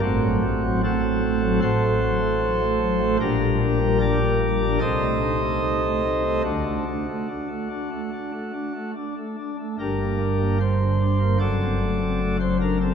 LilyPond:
<<
  \new Staff \with { instrumentName = "Pipe organ" } { \time 4/4 \key g \minor \tempo 4 = 74 <a c' fis'>4 <c' fis' a'>4 <fis' a' c''>2 | <d' g' bes'>4 <g' bes' d''>4 <a' c'' ees''>2 | <a d' fis'>2. r4 | <d' g' bes'>4 c''4 <fis' a' d''>4~ <fis' a' d''>16 c''16 bes'16 a'16 | }
  \new Staff \with { instrumentName = "Pipe organ" } { \time 4/4 \key g \minor << { a,16 fis16 a16 fis16 a16 fis16 a16 fis16 a,16 a16 fis16 a16 fis16 a16 fis16 a16 | bes,16 g16 d'16 g16 d'16 bes16 g16 d'16 c16 a16 ees'16 a16 ees'16 a16 ees'16 a16 | d16 a16 d'16 a16 d'16 a16 d'16 a16 d'16 a16 d'16 a16 d'16 a16 d'16 a16 | g,16 bes16 g16 bes16 g16 d16 d'16 bes16 fis,16 c'16 a16 c'16 a16 fis16 d'16 c'16 | } \\ { a,,2 a,,2 | bes,,2 c,2 | d,16 r2. r8. | g,,2 fis,,2 | } >> }
>>